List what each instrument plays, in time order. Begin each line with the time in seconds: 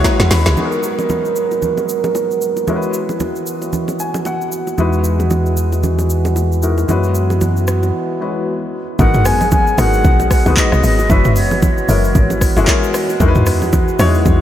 Already playing: french horn section E3 B3 F#4, grand piano G#3 C#4 E4 F#4 B4 C#5 D#5 E5 F#5, flute F#5
0.04 grand piano A#5, kick, snare, high bongo, shaker
0.20 log drum bass E2, snare, shaker
0.31 log drum bass D#2, grand piano B5, snare, open hi-hat, shaker
0.46 log drum bass C#2, snare, high bongo, shaker
0.57 french horn section G#2 F#3 B3 A#4, grand piano G#3 B3 D#4 F#4 G#4, low conga, shaker
0.65 grand piano A#4
0.72 shaker
0.83 shaker
0.99 low bongo, shaker
1.09 high bongo, low conga, shaker
1.25 shaker
1.36 shaker
1.51 high bongo, shaker
1.62 low conga, shaker
1.78 low bongo, shaker
1.89 shaker
2.04 low bongo, shaker
2.15 high bongo, shaker
2.31 shaker
2.41 shaker
2.57 high bongo, shaker
2.67 french horn section E3 F#4, grand piano G#3 C#4 E4 F#4 A#4, low conga, shaker
2.76 grand piano B4
2.82 shaker
2.94 shaker
3.09 low bongo, shaker
3.20 high bongo, low conga, shaker
3.36 shaker
3.46 shaker
3.62 high bongo, shaker
3.73 low conga, shaker
3.88 low bongo, shaker
3.99 grand piano G#5, shaker
4.14 low bongo, shaker
4.25 grand piano F#5, high bongo, shaker
4.41 shaker
4.52 shaker
4.67 high bongo, shaker
4.78 sub bass E2, french horn section E3 G#3, grand piano G#3 D#4 E4 F#4 B4, low conga, shaker
4.93 shaker
5.04 shaker
5.20 low bongo, shaker
5.30 high bongo, low conga, shaker
5.46 shaker
5.57 shaker
5.72 high bongo, shaker
5.83 low conga, shaker
5.99 low bongo, shaker
6.10 shaker
6.25 low bongo, shaker
6.36 high bongo, shaker
6.52 shaker
6.62 grand piano G#3 D#4 E4 F#4 A#4, shaker
6.78 high bongo, shaker
6.88 sub bass F#2, french horn section E3 B3 F#4, grand piano G#3 C#4 E4 F#4 B4, low conga, shaker
7.03 shaker
7.15 shaker
7.30 low bongo, shaker
7.41 high bongo, low conga, shaker
7.57 shaker
7.67 cross-stick, shaker
7.83 high bongo, shaker
8.20 grand piano G#3 C#4 E4 F#4 B4
8.99 log drum bass G#1, french horn section F#3 B3 G#4, grand piano G#3 B3 D#4 F#4 A#4, flute F#5, kick, low conga, shaker
9.14 mid tom, shaker
9.25 flute G#5, cross-stick, open hi-hat, shaker
9.41 low bongo, shaker
9.51 flute G#5, kick, high bongo, low conga, shaker
9.67 shaker
9.78 log drum bass G#1, grand piano G#3 B3 D#4 F#4 A#4, flute F#5, cross-stick, open hi-hat, shaker
9.94 shaker
10.04 log drum bass B1, kick, low conga, shaker
10.20 low bongo, shaker
10.31 flute F#5, kick, cross-stick, open hi-hat, shaker
10.46 log drum bass C#2, grand piano G#3 B3 D#4 F#4 B4, low bongo, shaker
10.57 flute D#5, kick, clap, high bongo, shaker
10.72 log drum bass B1, cross-stick, shaker
10.83 log drum bass G#1, open hi-hat, shaker
10.99 high bongo, shaker
11.10 log drum bass F#1, french horn section E3 F#4, grand piano G#3 C#4 E4 F#4 B4, flute E5, kick, low conga, shaker
11.25 mid tom, shaker
11.36 flute C#5, open hi-hat, shaker
11.51 low bongo, shaker
11.62 flute C#5, kick, high bongo, low conga, shaker
11.78 shaker
11.89 log drum bass F#1, grand piano G#3 C#4 E4 F#4 A#4, open hi-hat, shaker
12.04 shaker
12.15 log drum bass G#1, kick, low conga, shaker
12.30 low bongo, shaker
12.41 kick, cross-stick, open hi-hat, shaker
12.57 log drum bass F#1, grand piano G#3 C#4 E4 F#4 G#4, low bongo, shaker
12.64 grand piano A#4, kick, clap, high bongo, shaker
12.84 shaker
12.94 cross-stick, open hi-hat, shaker
13.09 high bongo, shaker
13.20 log drum bass E2, french horn section E3 G#3, grand piano G#3 D#4 E4 F#4 A#4, kick, low conga, shaker
13.28 grand piano B4
13.35 mid tom, shaker
13.46 cross-stick, open hi-hat, shaker
13.62 low bongo, shaker
13.73 kick, high bongo, low conga, shaker
13.88 shaker
13.99 log drum bass E2, grand piano F#3 D#4 E4 F#4 C#5, cross-stick, open hi-hat, shaker
14.06 grand piano G#3
14.15 shaker
14.25 log drum bass E2, kick, low conga, shaker